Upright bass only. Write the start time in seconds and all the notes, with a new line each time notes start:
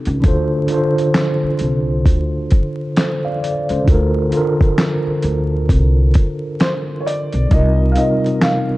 0.07 C#2
0.24 D2
1.43 muted upright bass stroke
1.61 C2
2.06 D2
3.70 C#2
3.88 D2
5.06 muted upright bass stroke
5.24 D2
5.69 C2
7.34 B1
7.51 C2
8.70 muted upright bass stroke